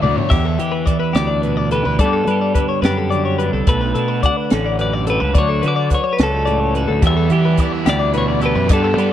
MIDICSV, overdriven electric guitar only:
0, 0, Header, 1, 2, 480
1, 0, Start_track
1, 0, Tempo, 559180
1, 276, Time_signature, 6, 3, 24, 8
1, 7835, End_track
2, 0, Start_track
2, 0, Title_t, "Overdriven electric guitar"
2, 0, Program_c, 0, 29
2, 16, Note_on_c, 0, 62, 70
2, 28, Note_on_c, 0, 57, 73
2, 39, Note_on_c, 0, 54, 62
2, 51, Note_on_c, 0, 50, 58
2, 251, Note_off_c, 0, 62, 0
2, 257, Note_off_c, 0, 57, 0
2, 263, Note_off_c, 0, 54, 0
2, 269, Note_off_c, 0, 50, 0
2, 6035, Note_on_c, 0, 52, 66
2, 6041, Note_on_c, 0, 55, 79
2, 6041, Note_on_c, 0, 59, 79
2, 6041, Note_on_c, 0, 64, 71
2, 6258, Note_off_c, 0, 64, 0
2, 6263, Note_off_c, 0, 59, 0
2, 6268, Note_on_c, 0, 64, 69
2, 6270, Note_off_c, 0, 55, 0
2, 6273, Note_off_c, 0, 52, 0
2, 6273, Note_on_c, 0, 59, 53
2, 6280, Note_on_c, 0, 55, 58
2, 6283, Note_on_c, 0, 52, 54
2, 6500, Note_off_c, 0, 52, 0
2, 6505, Note_off_c, 0, 55, 0
2, 6510, Note_off_c, 0, 59, 0
2, 6510, Note_on_c, 0, 52, 55
2, 6514, Note_off_c, 0, 64, 0
2, 6515, Note_on_c, 0, 55, 62
2, 6520, Note_on_c, 0, 59, 57
2, 6523, Note_on_c, 0, 64, 71
2, 6746, Note_off_c, 0, 64, 0
2, 6748, Note_off_c, 0, 52, 0
2, 6748, Note_off_c, 0, 59, 0
2, 6749, Note_off_c, 0, 55, 0
2, 6756, Note_on_c, 0, 64, 68
2, 6758, Note_on_c, 0, 52, 52
2, 6759, Note_on_c, 0, 55, 62
2, 6759, Note_on_c, 0, 59, 54
2, 6979, Note_off_c, 0, 52, 0
2, 6979, Note_off_c, 0, 55, 0
2, 6980, Note_off_c, 0, 59, 0
2, 6985, Note_off_c, 0, 64, 0
2, 6989, Note_on_c, 0, 52, 59
2, 6989, Note_on_c, 0, 55, 62
2, 6990, Note_on_c, 0, 59, 58
2, 6995, Note_on_c, 0, 64, 71
2, 7199, Note_off_c, 0, 64, 0
2, 7204, Note_off_c, 0, 59, 0
2, 7209, Note_off_c, 0, 55, 0
2, 7209, Note_on_c, 0, 64, 74
2, 7214, Note_on_c, 0, 59, 63
2, 7218, Note_off_c, 0, 52, 0
2, 7220, Note_on_c, 0, 55, 63
2, 7228, Note_on_c, 0, 52, 57
2, 7444, Note_off_c, 0, 52, 0
2, 7444, Note_off_c, 0, 55, 0
2, 7445, Note_off_c, 0, 59, 0
2, 7447, Note_on_c, 0, 50, 81
2, 7455, Note_on_c, 0, 55, 75
2, 7456, Note_on_c, 0, 59, 78
2, 7459, Note_off_c, 0, 64, 0
2, 7462, Note_on_c, 0, 62, 82
2, 7683, Note_off_c, 0, 59, 0
2, 7683, Note_off_c, 0, 62, 0
2, 7687, Note_off_c, 0, 55, 0
2, 7689, Note_off_c, 0, 50, 0
2, 7693, Note_on_c, 0, 59, 68
2, 7693, Note_on_c, 0, 62, 72
2, 7698, Note_on_c, 0, 55, 61
2, 7700, Note_on_c, 0, 50, 52
2, 7835, Note_off_c, 0, 50, 0
2, 7835, Note_off_c, 0, 55, 0
2, 7835, Note_off_c, 0, 59, 0
2, 7835, Note_off_c, 0, 62, 0
2, 7835, End_track
0, 0, End_of_file